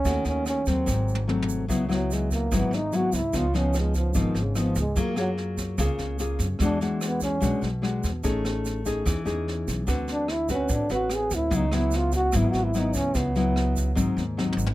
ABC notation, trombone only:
X:1
M:4/4
L:1/8
Q:1/4=147
K:C#m
V:1 name="Trombone"
C C C ^B,3 z2 | z F, G, ^A, B, D F E | ^E C G, ^E, D, C, E, G, | ^A, F, z6 |
=D F, B, C2 z3 | z8 | z =D E C D F G E | D E ^E F (3=E F E D C |
B,4 z4 |]